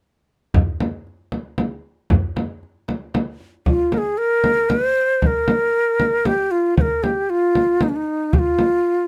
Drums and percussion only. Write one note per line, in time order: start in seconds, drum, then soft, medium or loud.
0.54 tombak dum medium
0.54 frame drum medium
0.80 tombak tek soft
0.80 frame drum medium
1.07 tombak ka soft
1.32 tombak tek soft
1.32 frame drum soft
1.58 tombak tek soft
1.58 frame drum medium
2.10 frame drum medium
2.10 tombak dum medium
2.36 tombak tek soft
2.36 frame drum medium
2.63 tombak ka soft
2.88 tombak tek soft
2.88 frame drum soft
3.14 tombak tek medium
3.14 frame drum medium
3.40 tombak ka soft
3.66 frame drum medium
3.92 frame drum medium
4.44 frame drum medium
4.70 frame drum medium
5.22 frame drum medium
5.48 frame drum medium
6.00 frame drum medium
6.25 frame drum medium
6.77 frame drum medium
7.04 frame drum medium
7.55 frame drum medium
7.81 frame drum medium
8.33 frame drum medium
8.59 frame drum medium